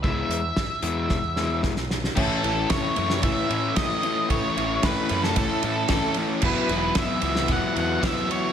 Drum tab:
CC |----------------|x---------------|----------------|x---------------|
RD |----------------|--x-x-x-x-x-x-x-|x-x-x-x-x-x-x-x-|--x-x-x-x-x-x-x-|
HH |--x---x---------|----------------|----------------|----------------|
SD |----o---o-o-oooo|----o--o----o---|----o--o----o---|----o--o----o---|
BD |o---o---o---o---|o---o---o---o---|o---o---o---o---|o---o---o---o---|